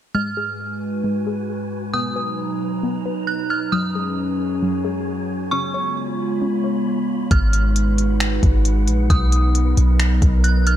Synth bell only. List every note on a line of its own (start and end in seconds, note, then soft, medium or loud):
0.15 0.57 F6 medium
1.94 2.36 D#6 loud
3.27 3.49 F#6 medium
3.50 3.72 F6 medium
3.72 4.15 D#6 loud
5.51 5.94 C#6 loud
7.31 7.73 F6 medium
9.10 9.52 D#6 loud
10.44 10.65 F#6 medium
10.67 10.77 F6 medium